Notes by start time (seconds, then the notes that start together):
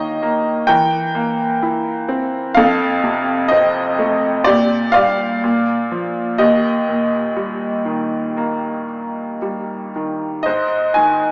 Already playing: D#3 A#3 G4 C#5 D#5
0.22 A#3
0.67 E3 A#4 G5
1.15 A#3
1.63 E4
2.08 C4
2.55 F2 A4 F5
3.03 C3
3.48 C4 D#5
3.99 A3
4.44 A#2 G4 D5
4.92 D5 F5
4.96 G3
5.44 A#2
5.91 F3
6.38 D#2 G4 D#5
6.89 A#2
7.36 G3
7.85 D#3
8.37 A#3
9.42 G3
9.96 D#3
10.43 G#2 C5 D#5
10.94 D#3 G#5